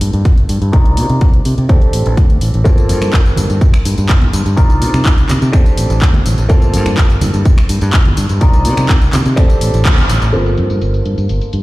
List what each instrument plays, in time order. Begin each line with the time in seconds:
Already playing: grand piano A#3 C4 F4 A4
0.01 fingered electric bass G2, open hi-hat
0.13 fingered electric bass G2, closed hi-hat
0.25 fingered electric bass G1, kick, closed hi-hat
0.38 closed hi-hat
0.49 fingered electric bass G2, open hi-hat
0.62 fingered electric bass G2, closed hi-hat
0.72 fingered electric bass C2, grand piano D4 D#4 F4 A#4, kick, closed hi-hat
0.86 closed hi-hat
0.97 fingered electric bass C3, open hi-hat
1.09 fingered electric bass C3, closed hi-hat
1.21 fingered electric bass C2, kick, closed hi-hat
1.34 closed hi-hat
1.45 fingered electric bass C3, open hi-hat
1.58 fingered electric bass C3, closed hi-hat
1.69 fingered electric bass D2, grand piano C4 D4 G4 A4, kick, closed hi-hat
1.82 closed hi-hat
1.93 fingered electric bass A1, open hi-hat
2.06 fingered electric bass A1, closed hi-hat
2.17 fingered electric bass D2, kick, closed hi-hat
2.30 closed hi-hat
2.41 fingered electric bass A1, open hi-hat
2.54 fingered electric bass A1, closed hi-hat
2.64 grand piano A#3 C4 F4 A4, kick, closed hi-hat, tambourine
2.78 closed hi-hat, tambourine
2.89 fingered electric bass G2, open hi-hat, tambourine
3.01 fingered electric bass G2, finger snap, closed hi-hat, tambourine, high conga, shaker
3.13 fingered electric bass G1, kick, clap, closed hi-hat, tambourine
3.25 closed hi-hat, tambourine, shaker
3.36 fingered electric bass G2, open hi-hat, tambourine, low conga
3.49 fingered electric bass G2, closed hi-hat, tambourine, shaker
3.61 fingered electric bass G1, kick, closed hi-hat, tambourine
3.74 finger snap, closed hi-hat, tambourine, shaker
3.85 fingered electric bass G2, open hi-hat, tambourine
3.97 fingered electric bass G2, closed hi-hat, tambourine, shaker
4.09 fingered electric bass G1, kick, clap, closed hi-hat, tambourine
4.22 closed hi-hat, high conga, low conga, shaker
4.33 fingered electric bass G2, open hi-hat, tambourine
4.45 fingered electric bass G2, closed hi-hat, tambourine, shaker
4.57 fingered electric bass C2, grand piano D4 D#4 F4 A#4, kick, closed hi-hat, tambourine
4.70 closed hi-hat, tambourine
4.81 fingered electric bass C3, open hi-hat, tambourine
4.94 fingered electric bass C3, finger snap, closed hi-hat, tambourine, high conga, shaker
5.05 fingered electric bass C2, kick, clap, closed hi-hat, tambourine, shaker
5.17 closed hi-hat, tambourine, shaker
5.29 fingered electric bass C3, clap, open hi-hat, tambourine, low conga
5.41 fingered electric bass C3, closed hi-hat, tambourine, shaker
5.52 fingered electric bass D2, grand piano C4 D4 G4 A4, finger snap, kick, closed hi-hat, tambourine
5.65 closed hi-hat, tambourine, shaker
5.77 fingered electric bass A1, open hi-hat, tambourine
5.89 fingered electric bass A1, closed hi-hat, tambourine, shaker
6.02 fingered electric bass D2, kick, clap, closed hi-hat, tambourine
6.13 closed hi-hat, high conga, low conga, shaker
6.25 fingered electric bass A1, open hi-hat, tambourine
6.37 fingered electric bass A1, closed hi-hat, tambourine, shaker
6.49 grand piano A#3 C4 F4 A4, kick, closed hi-hat, tambourine
6.62 closed hi-hat, tambourine
6.73 fingered electric bass G2, open hi-hat, tambourine
6.86 fingered electric bass G2, finger snap, closed hi-hat, tambourine, high conga, shaker
6.97 fingered electric bass G1, kick, clap, closed hi-hat, tambourine, shaker
7.10 closed hi-hat, tambourine, shaker
7.21 fingered electric bass G2, open hi-hat, tambourine, low conga
7.33 fingered electric bass G2, closed hi-hat, tambourine, shaker
7.45 fingered electric bass G1, kick, closed hi-hat, tambourine
7.57 finger snap, closed hi-hat, tambourine, shaker
7.69 fingered electric bass G2, open hi-hat, tambourine
7.81 fingered electric bass G2, closed hi-hat, tambourine, shaker
7.93 fingered electric bass G1, kick, clap, closed hi-hat, tambourine
8.05 closed hi-hat, high conga, low conga, shaker
8.17 fingered electric bass G2, open hi-hat, tambourine
8.29 fingered electric bass G2, closed hi-hat, tambourine, shaker
8.41 fingered electric bass C2, grand piano D4 D#4 F4 A#4, kick, closed hi-hat, tambourine
8.53 closed hi-hat, tambourine, shaker
8.65 fingered electric bass C3, open hi-hat, tambourine
8.77 fingered electric bass C3, finger snap, closed hi-hat, tambourine, high conga, shaker
8.88 fingered electric bass C2, kick, clap, closed hi-hat, tambourine, shaker
9.02 closed hi-hat, tambourine
9.13 fingered electric bass C3, clap, open hi-hat, tambourine, low conga
9.26 fingered electric bass C3, closed hi-hat, tambourine, shaker
9.36 fingered electric bass D2, grand piano C4 D4 G4 A4, finger snap, kick, closed hi-hat, tambourine, shaker
9.50 closed hi-hat, tambourine, shaker
9.61 fingered electric bass A1, open hi-hat, tambourine
9.74 fingered electric bass A1, closed hi-hat, tambourine, shaker
9.85 fingered electric bass D2, kick, clap, closed hi-hat, tambourine
9.98 closed hi-hat, tambourine, high conga, low conga, shaker
10.09 fingered electric bass A1, open hi-hat, tambourine
10.22 fingered electric bass A1, closed hi-hat, tambourine, shaker
10.32 fingered electric bass G1, grand piano A#3 C4 F4 A4, violin section C6, closed hi-hat, tambourine
10.46 closed hi-hat, tambourine
10.57 fingered electric bass G2, closed hi-hat
10.70 fingered electric bass G2, closed hi-hat, tambourine
10.81 fingered electric bass G1, closed hi-hat, tambourine
10.94 closed hi-hat, tambourine
11.05 fingered electric bass G2, closed hi-hat
11.18 fingered electric bass G2, closed hi-hat, tambourine
11.29 fingered electric bass G1, closed hi-hat, tambourine
11.41 closed hi-hat, tambourine
11.53 fingered electric bass G2, closed hi-hat